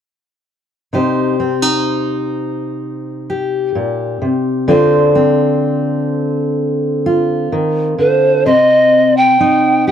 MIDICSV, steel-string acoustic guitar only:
0, 0, Header, 1, 2, 480
1, 0, Start_track
1, 0, Tempo, 941915
1, 466, Time_signature, 4, 2, 24, 8
1, 5052, End_track
2, 0, Start_track
2, 0, Title_t, "Steel-string acoustic guitar"
2, 0, Program_c, 0, 25
2, 473, Note_on_c, 0, 48, 43
2, 477, Note_on_c, 0, 63, 35
2, 481, Note_on_c, 0, 67, 38
2, 483, Note_on_c, 0, 72, 45
2, 710, Note_off_c, 0, 63, 0
2, 712, Note_on_c, 0, 60, 39
2, 826, Note_off_c, 0, 60, 0
2, 826, Note_on_c, 0, 63, 31
2, 1674, Note_off_c, 0, 67, 0
2, 1680, Note_on_c, 0, 67, 45
2, 1910, Note_off_c, 0, 48, 0
2, 1912, Note_on_c, 0, 46, 44
2, 2146, Note_off_c, 0, 46, 0
2, 2148, Note_on_c, 0, 48, 41
2, 2366, Note_off_c, 0, 67, 0
2, 2369, Note_off_c, 0, 72, 0
2, 2383, Note_on_c, 0, 50, 57
2, 2384, Note_off_c, 0, 63, 0
2, 2386, Note_on_c, 0, 60, 41
2, 2389, Note_off_c, 0, 48, 0
2, 2391, Note_on_c, 0, 65, 40
2, 2397, Note_on_c, 0, 72, 45
2, 2620, Note_off_c, 0, 60, 0
2, 2626, Note_on_c, 0, 60, 43
2, 3591, Note_off_c, 0, 65, 0
2, 3598, Note_on_c, 0, 65, 46
2, 3827, Note_off_c, 0, 50, 0
2, 3834, Note_on_c, 0, 51, 51
2, 4067, Note_off_c, 0, 51, 0
2, 4069, Note_on_c, 0, 50, 45
2, 4284, Note_off_c, 0, 65, 0
2, 4284, Note_off_c, 0, 72, 0
2, 4309, Note_off_c, 0, 50, 0
2, 4309, Note_on_c, 0, 48, 57
2, 4313, Note_on_c, 0, 72, 50
2, 4790, Note_off_c, 0, 60, 0
2, 4793, Note_on_c, 0, 63, 47
2, 5031, Note_on_c, 0, 67, 40
2, 5052, Note_off_c, 0, 48, 0
2, 5052, Note_off_c, 0, 63, 0
2, 5052, Note_off_c, 0, 67, 0
2, 5052, Note_off_c, 0, 72, 0
2, 5052, End_track
0, 0, End_of_file